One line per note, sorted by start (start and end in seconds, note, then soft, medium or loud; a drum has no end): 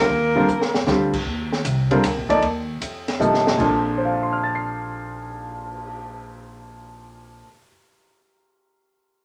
0.00 0.84 A#3 medium
0.00 0.84 A#4 medium
0.08 0.47 D#2 medium
0.35 0.47 D3 medium
0.35 0.47 G3 medium
0.35 0.47 C4 medium
0.35 0.47 F4 medium
0.35 0.47 A#4 medium
0.48 0.86 F2 medium
0.48 hi-hat pedal medium
0.61 snare medium
0.74 snare medium
0.86 1.24 D2 medium
0.86 1.10 D3 medium
0.86 1.10 G3 medium
0.86 1.10 C4 medium
0.86 1.11 F4 medium
0.86 1.11 G4 medium
0.86 snare medium
1.13 kick medium
1.13 crash medium
1.25 1.63 D#2 medium
1.52 snare medium
1.65 2.03 C2 medium
1.65 hi-hat pedal medium
1.65 ride medium
1.91 2.03 D3 medium
1.91 2.02 G3 medium
1.91 2.03 C4 medium
1.91 2.03 F4 medium
1.91 2.03 A#4 medium
1.91 ride soft
2.04 2.16 D2 medium
2.04 snare soft
2.04 hi-hat pedal medium
2.04 ride medium
2.16 2.28 A#1 medium
2.29 2.41 G1 medium
2.29 2.41 F3 medium
2.29 2.41 A#3 medium
2.29 2.41 D#4 medium
2.29 2.41 A4 medium
2.29 2.41 D5 medium
2.29 kick medium
2.29 ride soft
2.42 2.80 D#2 medium
2.42 ride soft
2.80 3.19 F2 medium
2.80 hi-hat pedal soft
2.80 ride medium
3.08 snare soft
3.08 ride soft
3.19 3.58 G2 medium
3.19 3.59 C3 medium
3.19 3.57 F3 medium
3.19 3.59 A#3 medium
3.19 3.59 D#4 medium
3.19 3.59 A4 medium
3.19 hi-hat pedal medium
3.34 snare medium
3.47 snare medium
3.58 7.39 A#1 medium
3.58 7.42 A#2 medium
3.58 7.43 F3 medium
3.58 7.43 C4 medium
3.58 7.44 D4 medium
3.58 7.44 A4 medium
3.58 kick medium
3.58 crash medium
3.85 cymbal swell soft
3.98 7.39 C5 soft
4.05 7.43 F5 soft
4.14 7.47 A5 soft
4.22 7.51 C6 soft
4.33 7.56 F6 soft
4.43 7.62 A6 soft
4.55 7.68 C7 soft